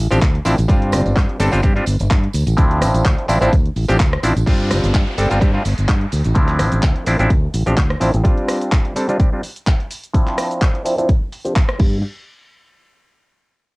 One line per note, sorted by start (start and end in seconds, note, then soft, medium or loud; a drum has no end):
0.11 0.18 A1 medium
0.11 0.19 F3 medium
0.11 0.19 C4 medium
0.11 0.19 D4 medium
0.11 0.20 G4 loud
0.11 closed hi-hat medium
0.11 tambourine medium
0.11 cabasa soft
0.21 0.38 D2 loud
0.21 kick loud
0.21 clap loud
0.21 closed hi-hat medium
0.21 tambourine soft
0.21 cabasa soft
0.35 closed hi-hat soft
0.45 0.54 A1 medium
0.45 0.55 F3 medium
0.45 0.55 C4 medium
0.45 0.55 D4 medium
0.45 0.55 E4 loud
0.45 open hi-hat medium
0.45 tambourine loud
0.45 cabasa medium
0.58 0.65 A1 loud
0.58 closed hi-hat medium
0.58 tambourine soft
0.58 cabasa soft
0.68 0.95 G2 loud
0.68 1.37 G3 medium
0.68 1.37 C4 medium
0.68 1.38 D4 medium
0.68 1.38 F4 loud
0.68 kick loud
0.68 closed hi-hat medium
0.68 tambourine soft
0.68 cabasa soft
0.82 closed hi-hat soft
0.92 1.01 G1 loud
0.92 cross-stick medium
0.92 open hi-hat medium
0.92 tambourine loud
0.92 cabasa medium
1.06 1.12 G1 medium
1.06 closed hi-hat medium
1.06 tambourine soft
1.06 cabasa soft
1.16 1.25 G2 loud
1.16 kick loud
1.16 clap loud
1.16 closed hi-hat medium
1.16 cabasa soft
1.29 closed hi-hat soft
1.40 1.48 G1 loud
1.40 1.51 G3 medium
1.40 1.51 C4 medium
1.40 1.51 D4 medium
1.40 1.51 A4 medium
1.40 open hi-hat medium
1.40 tambourine loud
1.40 cabasa medium
1.52 1.60 G1 medium
1.52 1.61 G3 medium
1.52 1.61 C4 medium
1.52 1.61 D4 medium
1.52 1.61 F4 medium
1.52 closed hi-hat medium
1.52 tambourine soft
1.52 cabasa soft
1.63 1.79 G2 loud
1.63 1.73 G3 medium
1.63 1.73 C4 medium
1.63 1.73 D4 medium
1.63 1.74 G4 medium
1.63 kick loud
1.63 closed hi-hat medium
1.63 tambourine soft
1.63 cabasa soft
1.76 1.84 G3 medium
1.76 1.85 C4 medium
1.76 1.85 D4 medium
1.76 1.85 F4 medium
1.76 closed hi-hat soft
1.86 1.95 G1 loud
1.86 open hi-hat loud
1.86 tambourine medium
1.86 cabasa medium
1.99 2.07 G1 medium
1.99 closed hi-hat medium
1.99 tambourine soft
1.99 cabasa soft
2.11 2.27 G2 medium
2.11 kick loud
2.11 clap loud
2.11 closed hi-hat medium
2.11 cabasa soft
2.24 closed hi-hat soft
2.33 2.42 D2 medium
2.33 open hi-hat medium
2.33 tambourine loud
2.33 cabasa medium
2.47 2.54 A1 loud
2.47 closed hi-hat medium
2.47 tambourine soft
2.47 cabasa soft
2.57 2.83 D2 loud
2.57 3.26 F3 loud
2.57 3.26 C4 medium
2.57 3.26 D4 medium
2.57 3.27 E4 loud
2.57 kick loud
2.57 closed hi-hat medium
2.57 tambourine soft
2.57 cabasa soft
2.71 closed hi-hat soft
2.81 2.89 A1 loud
2.81 cross-stick medium
2.81 open hi-hat loud
2.81 tambourine medium
2.81 cabasa medium
2.94 3.01 A1 medium
2.94 closed hi-hat medium
2.94 tambourine soft
2.94 cabasa soft
3.05 3.14 D2 medium
3.05 kick loud
3.05 clap loud
3.05 closed hi-hat medium
3.05 cabasa soft
3.18 closed hi-hat soft
3.28 3.37 A1 loud
3.28 3.38 F3 medium
3.28 3.39 C4 medium
3.28 3.39 D4 medium
3.28 3.39 E4 loud
3.28 open hi-hat medium
3.28 tambourine medium
3.28 cabasa medium
3.41 3.48 A1 medium
3.41 3.55 F3 medium
3.41 3.55 C4 medium
3.41 3.55 D4 medium
3.41 3.56 E4 loud
3.41 closed hi-hat medium
3.41 tambourine soft
3.41 cabasa soft
3.53 3.68 D2 loud
3.53 kick loud
3.53 closed hi-hat medium
3.53 tambourine soft
3.53 cabasa soft
3.66 closed hi-hat soft
3.76 3.84 A1 loud
3.76 open hi-hat loud
3.76 tambourine medium
3.76 cabasa medium
3.88 3.96 A1 medium
3.88 3.97 F3 medium
3.88 3.97 C4 medium
3.88 3.97 D4 medium
3.88 3.97 G4 medium
3.88 closed hi-hat medium
3.88 tambourine soft
3.88 cabasa soft
4.00 kick loud
4.00 clap loud
4.00 closed hi-hat medium
4.00 cabasa soft
4.13 cross-stick medium
4.13 closed hi-hat soft
4.23 4.31 A1 medium
4.23 4.33 F3 medium
4.23 4.33 C4 medium
4.23 4.33 D4 medium
4.23 4.33 E4 medium
4.23 open hi-hat medium
4.23 tambourine medium
4.23 cabasa medium
4.36 4.43 A1 medium
4.36 closed hi-hat medium
4.36 tambourine soft
4.36 cabasa soft
4.46 4.72 G2 medium
4.46 5.15 G3 medium
4.46 5.15 C4 medium
4.46 5.16 D4 medium
4.46 5.16 F4 medium
4.46 kick loud
4.46 closed hi-hat medium
4.46 crash loud
4.46 tambourine soft
4.46 downlifter medium
4.46 cabasa soft
4.60 closed hi-hat soft
4.71 4.79 G1 medium
4.71 cross-stick medium
4.71 open hi-hat loud
4.71 tambourine loud
4.71 cabasa medium
4.83 4.90 G1 medium
4.83 closed hi-hat medium
4.83 tambourine medium
4.83 cabasa soft
4.94 5.02 G2 medium
4.94 kick loud
4.94 clap loud
4.94 closed hi-hat medium
4.94 cabasa soft
5.07 closed hi-hat soft
5.17 5.26 G1 medium
5.17 5.29 G3 medium
5.17 5.29 C4 medium
5.17 5.29 D4 medium
5.17 5.29 A4 medium
5.17 open hi-hat medium
5.17 tambourine medium
5.17 cabasa medium
5.30 5.38 G1 medium
5.30 5.39 G3 medium
5.30 5.39 C4 medium
5.30 5.39 D4 medium
5.30 5.39 F4 medium
5.30 closed hi-hat medium
5.30 tambourine medium
5.30 cabasa soft
5.41 5.57 G2 loud
5.41 5.51 G3 medium
5.41 5.51 C4 medium
5.41 5.51 D4 medium
5.41 5.51 G4 medium
5.41 kick loud
5.41 closed hi-hat medium
5.41 cabasa soft
5.54 5.62 G3 medium
5.54 5.62 C4 medium
5.54 5.63 D4 medium
5.54 5.63 F4 medium
5.65 5.73 G1 loud
5.65 open hi-hat loud
5.65 tambourine medium
5.65 cabasa medium
5.78 5.85 G1 medium
5.78 closed hi-hat medium
5.78 tambourine soft
5.78 cabasa soft
5.88 6.04 G2 medium
5.88 kick loud
5.88 clap loud
5.88 closed hi-hat medium
5.88 tambourine soft
5.88 cabasa soft
6.01 closed hi-hat soft
6.12 6.21 D2 medium
6.12 open hi-hat medium
6.12 tambourine medium
6.12 cabasa medium
6.25 6.32 A1 loud
6.25 closed hi-hat medium
6.25 tambourine soft
6.25 cabasa soft
6.35 6.61 D2 loud
6.35 7.04 F3 medium
6.35 7.04 C4 medium
6.35 7.04 D4 medium
6.35 7.05 E4 loud
6.35 kick loud
6.35 closed hi-hat medium
6.35 tambourine soft
6.35 cabasa soft
6.48 clap soft
6.48 closed hi-hat soft
6.59 6.68 A1 medium
6.59 cross-stick medium
6.59 open hi-hat loud
6.59 tambourine medium
6.59 cabasa medium
6.72 6.79 A1 medium
6.72 closed hi-hat medium
6.72 tambourine medium
6.72 cabasa soft
6.83 6.91 D2 medium
6.83 kick loud
6.83 clap loud
6.83 closed hi-hat medium
6.83 cabasa soft
6.96 closed hi-hat soft
7.06 7.15 A1 loud
7.06 7.17 F3 medium
7.06 7.17 C4 medium
7.06 7.17 D4 medium
7.06 7.17 E4 medium
7.06 open hi-hat loud
7.06 tambourine medium
7.06 cabasa medium
7.19 7.26 A1 medium
7.19 7.33 F3 medium
7.19 7.33 C4 medium
7.19 7.33 D4 medium
7.19 7.33 E4 loud
7.19 closed hi-hat medium
7.19 tambourine medium
7.19 cabasa soft
7.30 7.46 D2 loud
7.30 kick loud
7.30 closed hi-hat medium
7.30 tambourine soft
7.30 cabasa soft
7.54 7.62 A1 loud
7.54 open hi-hat loud
7.54 tambourine medium
7.54 cabasa medium
7.66 7.74 A1 medium
7.66 7.75 F3 medium
7.66 7.75 C4 medium
7.66 7.75 D4 medium
7.66 7.75 G4 medium
7.66 closed hi-hat medium
7.66 tambourine medium
7.66 cabasa soft
7.78 7.93 D2 medium
7.78 kick loud
7.78 clap loud
7.78 closed hi-hat medium
7.78 cabasa soft
7.91 cross-stick medium
7.91 closed hi-hat soft
8.01 8.09 A1 medium
8.01 8.11 F3 medium
8.01 8.11 C4 medium
8.01 8.11 D4 medium
8.01 8.11 E4 medium
8.01 open hi-hat medium
8.01 tambourine loud
8.01 cabasa medium
8.14 8.21 A1 loud
8.14 closed hi-hat medium
8.14 tambourine soft
8.14 cabasa soft
8.24 8.93 G3 medium
8.24 8.93 C4 medium
8.24 8.93 D4 medium
8.24 8.93 F4 loud
8.24 kick loud
8.24 closed hi-hat medium
8.24 cabasa soft
8.38 closed hi-hat soft
8.48 cross-stick medium
8.48 open hi-hat loud
8.48 cabasa medium
8.61 closed hi-hat medium
8.61 tambourine soft
8.61 cabasa soft
8.72 kick loud
8.72 clap loud
8.72 closed hi-hat medium
8.72 cabasa soft
8.85 closed hi-hat soft
8.96 9.07 G3 medium
8.96 9.07 C4 medium
8.96 9.07 D4 medium
8.96 9.07 A4 medium
8.96 open hi-hat loud
8.96 cabasa medium
9.08 9.17 G3 medium
9.08 9.17 C4 medium
9.08 9.17 D4 medium
9.08 9.17 F4 medium
9.08 closed hi-hat soft
9.08 cabasa soft
9.19 9.29 C4 medium
9.19 9.29 D4 medium
9.19 9.30 G4 medium
9.19 kick loud
9.19 closed hi-hat medium
9.19 cabasa soft
9.32 9.41 G3 medium
9.32 9.41 C4 medium
9.32 9.41 D4 medium
9.32 9.41 F4 medium
9.43 open hi-hat loud
9.43 cabasa medium
9.56 closed hi-hat medium
9.56 tambourine medium
9.56 cabasa soft
9.67 kick loud
9.67 clap loud
9.67 closed hi-hat medium
9.67 cabasa soft
9.80 closed hi-hat soft
9.91 open hi-hat loud
9.91 tambourine loud
9.91 cabasa medium
10.03 closed hi-hat soft
10.03 tambourine medium
10.03 cabasa soft
10.13 10.82 F3 medium
10.13 10.82 C4 medium
10.13 10.83 D4 medium
10.13 10.83 E4 loud
10.13 kick loud
10.13 closed hi-hat medium
10.13 cabasa soft
10.27 clap soft
10.27 closed hi-hat soft
10.38 cross-stick medium
10.38 open hi-hat loud
10.38 cabasa medium
10.51 closed hi-hat soft
10.51 cabasa soft
10.61 kick loud
10.61 clap loud
10.61 closed hi-hat medium
10.61 cabasa soft
10.75 closed hi-hat soft
10.85 10.95 F3 medium
10.85 10.95 C4 medium
10.85 10.95 D4 medium
10.85 10.95 E4 medium
10.85 open hi-hat medium
10.85 cabasa medium
10.98 11.11 F3 medium
10.98 11.11 C4 medium
10.98 11.12 D4 medium
10.98 11.12 E4 loud
10.98 closed hi-hat soft
10.98 cabasa soft
11.09 kick loud
11.09 closed hi-hat medium
11.09 cabasa soft
11.32 open hi-hat loud
11.32 tambourine medium
11.32 cabasa medium
11.45 11.53 F3 medium
11.45 11.53 C4 medium
11.45 11.53 D4 medium
11.45 11.53 G4 medium
11.45 closed hi-hat medium
11.45 cabasa soft
11.56 kick loud
11.56 clap loud
11.56 closed hi-hat medium
11.56 cabasa soft
11.69 cross-stick medium
11.69 closed hi-hat soft
11.79 12.02 G2 loud
11.79 11.97 G3 medium
11.79 11.97 B3 medium
11.79 11.98 D4 medium
11.79 11.98 G4 medium
11.79 kick loud
11.79 crash medium